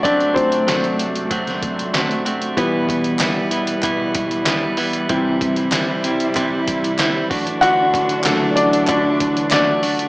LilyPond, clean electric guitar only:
\new Staff \with { instrumentName = "Clean electric guitar" } { \time 4/4 \key e \minor \tempo 4 = 95 <fis a c' fis'>4 <fis a c' fis'>4 <fis a c' fis'>4 <fis a c' fis'>8 <a c' fis'>8 | <e, b, e g b e'>4 <e g b e'>8 <e g b e'>8 <e, b, e g b e'>4 <e g b e'>8 <e g b e'>8 | <c e g c' e'>4 <e g c' e'>8 <g c' e'>8 <c e g c' e'>4 <e g c' e'>8 <a d' fis'>8 | <d e a d' fis'>4 <e a d' fis'>4 <d e a d' fis'>4 <e a d' fis'>8 <a d' fis'>8 | }